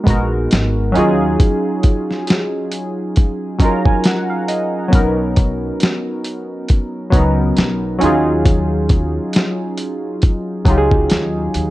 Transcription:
0.04 0.46 A#1 loud
0.04 0.94 G#3 medium
0.04 0.95 B3 medium
0.04 0.94 D#4 medium
0.04 kick loud
0.04 closed hi-hat medium
0.09 0.96 F#4 medium
0.09 0.97 A#4 medium
0.51 0.90 G#1 medium
0.51 snare loud
0.51 closed hi-hat medium
0.92 2.36 F#3 medium
0.92 2.37 C#4 medium
0.92 2.38 D#4 medium
0.92 closed hi-hat medium
0.96 1.35 D#2 loud
0.96 2.39 F4 medium
0.96 2.39 G#4 loud
1.40 kick loud
1.40 closed hi-hat medium
1.83 kick medium
1.83 closed hi-hat medium
2.11 snare soft
2.27 snare loud
2.27 closed hi-hat medium
2.72 closed hi-hat medium
3.16 kick medium
3.16 closed hi-hat medium
3.58 4.51 F#3 medium
3.58 4.52 C#4 medium
3.58 4.53 D#4 medium
3.58 3.84 A#5 medium
3.58 kick medium
3.58 closed hi-hat medium
3.63 4.54 F4 medium
3.63 4.54 A#4 medium
3.85 4.04 G#5 medium
3.85 kick medium
4.04 4.28 F#5 medium
4.04 snare loud
4.04 closed hi-hat medium
4.30 4.48 F5 medium
4.48 4.90 D#5 medium
4.48 closed hi-hat medium
4.88 6.13 F#3 medium
4.88 6.14 B3 medium
4.88 6.15 C#4 medium
4.93 5.69 B1 loud
4.93 6.16 D#4 medium
4.93 6.17 A#4 medium
4.93 kick loud
4.93 closed hi-hat medium
5.36 kick medium
5.36 closed hi-hat medium
5.80 snare loud
5.80 closed hi-hat medium
6.24 closed hi-hat medium
6.69 kick medium
6.69 closed hi-hat medium
7.10 7.51 C#2 medium
7.10 7.97 F#3 medium
7.10 8.01 B3 medium
7.10 7.99 C#4 medium
7.10 kick medium
7.10 closed hi-hat medium
7.15 8.01 D#4 medium
7.15 8.03 A#4 medium
7.57 7.96 B1 medium
7.57 snare loud
7.57 closed hi-hat medium
7.99 9.17 D#2 loud
7.99 9.42 F#3 medium
7.99 9.43 C#4 loud
7.99 9.44 D#4 medium
7.99 closed hi-hat medium
8.03 9.45 F4 medium
8.03 9.46 G#4 loud
8.46 kick loud
8.46 closed hi-hat medium
8.89 kick medium
8.89 closed hi-hat medium
9.33 snare loud
9.33 closed hi-hat medium
9.77 closed hi-hat medium
10.22 kick medium
10.22 closed hi-hat medium
10.64 11.04 C#2 medium
10.64 11.57 F#3 medium
10.64 11.58 C#4 medium
10.64 11.59 D#4 medium
10.64 kick loud
10.64 closed hi-hat medium
10.69 11.59 F4 medium
10.69 10.76 G4 medium
10.77 11.64 G#4 loud
10.91 kick medium
11.10 11.49 D#2 medium
11.10 snare loud
11.10 closed hi-hat medium
11.54 11.70 D#2 loud
11.54 closed hi-hat medium

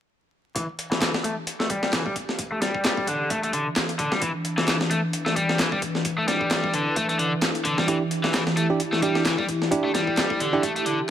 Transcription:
0.55 11.10 E3 medium
0.55 0.64 E3 medium
0.55 7.84 D4 medium
0.55 4.21 G4 medium
0.55 kick loud
0.55 closed hi-hat medium
0.79 closed hi-hat medium
0.91 0.98 E3 medium
0.91 snare medium
1.01 1.09 E3 medium
1.01 snare loud
1.01 clap medium
1.01 closed hi-hat medium
1.14 snare medium
1.24 1.32 A3 medium
1.24 closed hi-hat medium
1.47 closed hi-hat medium
1.60 1.67 A3 medium
1.60 snare soft
1.70 1.92 G3 loud
1.70 kick medium
1.70 closed hi-hat medium
1.83 snare soft
1.93 2.01 E3 loud
1.93 snare loud
1.93 clap loud
1.93 closed hi-hat medium
2.06 2.12 G3 medium
2.06 kick medium
2.16 kick medium
2.16 closed hi-hat medium
2.29 snare soft
2.39 kick loud
2.39 closed hi-hat medium
2.52 2.58 A3 medium
2.62 3.06 G3 medium
2.62 snare soft
2.62 closed hi-hat medium
2.75 kick medium
2.84 snare loud
2.84 clap loud
2.84 closed hi-hat medium
2.97 kick medium
3.07 3.29 D3 medium
3.07 closed hi-hat medium
3.30 3.39 A3 loud
3.30 kick loud
3.30 closed hi-hat medium
3.43 3.50 A3 medium
3.43 closed hi-hat soft
3.53 3.66 D3 medium
3.53 closed hi-hat medium
3.76 snare loud
3.76 clap loud
3.76 closed hi-hat medium
3.89 closed hi-hat soft
3.99 4.11 D3 medium
3.99 kick medium
3.99 closed hi-hat medium
4.12 4.21 G3 medium
4.12 snare soft
4.22 4.30 E3 medium
4.22 7.87 B4 medium
4.22 kick loud
4.22 closed hi-hat medium
4.45 closed hi-hat medium
4.58 4.64 E3 medium
4.58 snare medium
4.67 4.76 E3 loud
4.67 snare loud
4.67 clap loud
4.67 closed hi-hat medium
4.81 snare medium
4.91 4.99 A3 loud
4.91 closed hi-hat medium
5.13 closed hi-hat medium
5.26 5.33 A3 medium
5.26 snare soft
5.36 5.58 G3 medium
5.36 kick medium
5.36 closed hi-hat medium
5.49 snare soft
5.59 5.67 E3 loud
5.59 snare loud
5.59 clap loud
5.59 closed hi-hat medium
5.72 5.79 G3 medium
5.72 kick medium
5.82 kick medium
5.82 closed hi-hat medium
5.95 snare soft
6.05 kick loud
6.05 closed hi-hat medium
6.18 6.24 A3 medium
6.28 6.73 G3 medium
6.28 snare soft
6.28 closed hi-hat medium
6.41 kick medium
6.51 snare loud
6.51 clap loud
6.51 closed hi-hat medium
6.64 kick medium
6.74 6.96 D3 medium
6.74 closed hi-hat medium
6.96 7.05 A3 loud
6.96 kick loud
6.96 closed hi-hat medium
7.09 7.16 A3 medium
7.09 closed hi-hat soft
7.19 7.32 D3 medium
7.19 closed hi-hat medium
7.42 snare loud
7.42 clap loud
7.42 closed hi-hat medium
7.55 closed hi-hat soft
7.65 7.77 D3 medium
7.65 kick medium
7.65 closed hi-hat medium
7.78 7.87 G3 medium
7.78 snare soft
7.88 7.96 E3 medium
7.88 8.01 D4 medium
7.88 11.10 E4 medium
7.88 8.01 E4 medium
7.88 11.10 G4 medium
7.88 8.01 G4 medium
7.88 kick loud
7.88 closed hi-hat medium
8.11 closed hi-hat medium
8.24 8.30 E3 medium
8.24 snare medium
8.34 8.42 E3 loud
8.34 snare loud
8.34 clap loud
8.34 closed hi-hat medium
8.47 snare medium
8.57 8.65 A3 medium
8.57 closed hi-hat medium
8.70 8.80 D4 medium
8.70 8.80 E4 medium
8.70 8.80 G4 medium
8.80 closed hi-hat medium
8.93 8.99 A3 medium
8.93 snare soft
9.02 9.25 G3 loud
9.02 9.22 D4 medium
9.02 9.22 E4 medium
9.02 9.22 G4 medium
9.02 kick medium
9.02 closed hi-hat medium
9.15 snare soft
9.25 9.34 E3 medium
9.25 snare loud
9.25 clap loud
9.25 closed hi-hat medium
9.38 9.45 G3 medium
9.38 kick medium
9.49 kick medium
9.49 closed hi-hat medium
9.62 snare soft
9.71 9.90 D4 medium
9.71 9.90 E4 medium
9.71 9.90 G4 medium
9.71 kick loud
9.71 closed hi-hat medium
9.84 9.91 A3 medium
9.94 10.39 G3 medium
9.94 snare soft
9.94 closed hi-hat medium
10.07 kick medium
10.17 snare loud
10.17 clap loud
10.17 closed hi-hat medium
10.30 kick medium
10.40 10.62 D3 medium
10.40 closed hi-hat medium
10.53 10.63 D4 medium
10.53 10.63 E4 medium
10.53 10.63 G4 medium
10.63 10.71 A3 loud
10.63 kick loud
10.63 closed hi-hat medium
10.76 10.82 A3 medium
10.76 closed hi-hat soft
10.86 10.98 D3 medium
10.86 closed hi-hat medium

